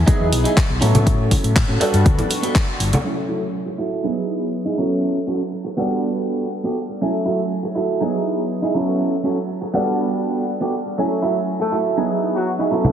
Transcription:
0.06 grand piano E3 F#3 B3 G#4 D#5, clean electric guitar D#4 E4 G#4, muted fingered electric bass stroke, kick, closed hi-hat
0.20 fingered electric bass E2
0.32 fingered electric bass B1, open hi-hat, shaker
0.44 clean electric guitar D#4 E4 G#4, closed hi-hat, shaker
0.57 kick, clap, closed hi-hat
0.69 fingered electric bass B1, muted clean electric guitar stroke
0.81 fingered electric bass A2, grand piano F#3 B3 C#4 E4 A4, clean electric guitar C#4 F#4 A4, open hi-hat, shaker
0.95 fingered electric bass A2, closed hi-hat, high conga, shaker
1.07 kick, closed hi-hat, shaker
1.31 kick, open hi-hat, high conga, shaker
1.44 fingered electric bass A2, closed hi-hat, shaker
1.56 kick, clap, closed hi-hat
1.68 fingered electric bass A2, clean electric guitar C#4 F#4 A4
1.80 grand piano G3 B3 D4 F#4 A4, clean electric guitar B3 F#4 A4, muted fingered electric bass stroke, open hi-hat, shaker
1.94 fingered electric bass G2, closed hi-hat, shaker
2.05 fingered electric bass D2, kick, closed hi-hat, shaker
2.18 closed hi-hat, low conga
2.30 open hi-hat, shaker
2.42 clean electric guitar B3 F#4 A4, closed hi-hat, shaker
2.55 kick, clap, closed hi-hat
2.67 muted clean electric guitar stroke
2.80 fingered electric bass G1, open hi-hat, shaker
2.93 closed hi-hat, high conga, shaker
3.04 grand piano F#3 A3 C#4 E4 G#5
3.29 clean electric guitar E4 F#4 A4
3.54 muted clean electric guitar stroke
3.66 muted clean electric guitar stroke
3.78 clean electric guitar E4 F#4 A4
4.03 grand piano F#3 B3 D#4 E4 G#4
4.65 clean electric guitar D#4 E4 G#4
4.78 grand piano F#3 B3 C#4 E4 A4, clean electric guitar C#4 F#4 A4
5.27 clean electric guitar C#4 F#4 A4
5.52 muted clean electric guitar stroke
5.65 muted clean electric guitar stroke
5.77 grand piano G3 B3 D4 A4 F#5, clean electric guitar B3 F#4 G4 A4
6.64 clean electric guitar B3 F#4 G4 A4
6.89 muted clean electric guitar stroke
7.01 grand piano F#3 A3 C#4 E4 G#5
7.26 clean electric guitar E4 F#4 A4
7.50 muted clean electric guitar stroke
7.63 muted clean electric guitar stroke
7.75 clean electric guitar E4 F#4 A4
8.00 grand piano F#3 B3 D#4 E4 G#4
8.62 clean electric guitar D#4 E4 G#4
8.74 grand piano F#3 B3 C#4 E4 A4, clean electric guitar C#4 F#4 A4
9.24 clean electric guitar C#4 F#4 A4
9.49 muted clean electric guitar stroke
9.62 muted clean electric guitar stroke
9.73 grand piano G3 B3 D4 A4 F#5, clean electric guitar B3 F#4 G4 A4
10.61 clean electric guitar B3 F#4 G4 A4
10.86 muted clean electric guitar stroke
10.98 grand piano F#3 A3 C#4 E4 G#5, shaker
11.22 clean electric guitar E4 F#4 A4, shaker
11.37 shaker
11.47 muted clean electric guitar stroke, shaker
11.60 horn section A3 A4, muted clean electric guitar stroke
11.72 clean electric guitar E4 F#4 A4, shaker
11.85 shaker
11.97 grand piano F#3 B3 D#4 E4 G#4, shaker
12.22 shaker
12.35 horn section F#3 F#4, shaker
12.47 shaker
12.59 clean electric guitar D#4 E4 G#4
12.71 grand piano F#3 B3 C#4 E4 A4, clean electric guitar C#4 F#4 A4, shaker
12.84 high conga, shaker

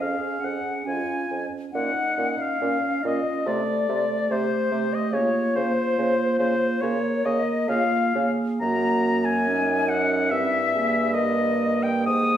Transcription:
Already playing: clarinet C#4
0.00 bassoon F2, french horn G#4, flute F5, oboe F5
0.40 bassoon F2, clarinet C#4, flute F#5
0.45 oboe F#5
0.85 bassoon F2, clarinet C#4, french horn F4, flute G#5, oboe G#5
1.28 bassoon F2, clarinet C#4
1.72 bassoon A#2, clarinet C#4, french horn D#4, flute F#5, oboe F#5
2.17 bassoon A#2, clarinet C#4
2.38 flute F5, oboe F5
2.61 bassoon A#2, clarinet C#4, french horn C#4
3.03 bassoon A#2, clarinet C#4, french horn F4, flute D#5, oboe D#5
3.46 bassoon C3, clarinet A3, french horn A4, oboe D5, flute D5
3.88 bassoon C3, clarinet A3
4.30 bassoon C3, clarinet A3, french horn G4, flute C5, oboe C5
4.71 bassoon C3, clarinet A3
4.93 flute D#5, oboe D#5
5.13 bassoon C#3, clarinet A#3, french horn F4, flute C#5, oboe C#5
5.56 bassoon C#3, clarinet A#3, oboe C5, flute C5
5.98 bassoon C#3, clarinet A#3
6.38 bassoon C#3, clarinet A#3, oboe C5, flute C5
6.81 bassoon C#3, clarinet A#3, french horn A#4, flute C#5, oboe C#5
7.25 bassoon C#3, clarinet A#3, flute D#5, oboe D#5
7.68 bassoon C#3, clarinet A#3, french horn F4, flute F5, oboe F5
8.15 bassoon C#3, clarinet A#3, french horn G#4
8.60 bassoon F#2, clarinet A#3, french horn F#4, flute A#5, oboe A#5
9.24 flute G#5, oboe G#5
9.48 clarinet C#4, french horn D#4
9.88 flute F#5, oboe F#5
10.30 bassoon G2, clarinet C4, french horn E4, flute E5, oboe E5
10.73 clarinet A#3, french horn G#4
11.14 french horn A#4, flute D#5, oboe D#5
11.83 flute G5, oboe G5
12.06 bassoon G#2, french horn G#4, flute D#6, oboe D#6

